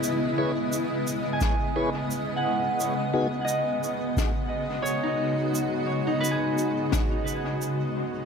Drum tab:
SH |x-xxx-x-|x-xxx-x-|x-xxxxx-|
SD |----o---|----o---|----o---|
BD |----o---|----o---|----o---|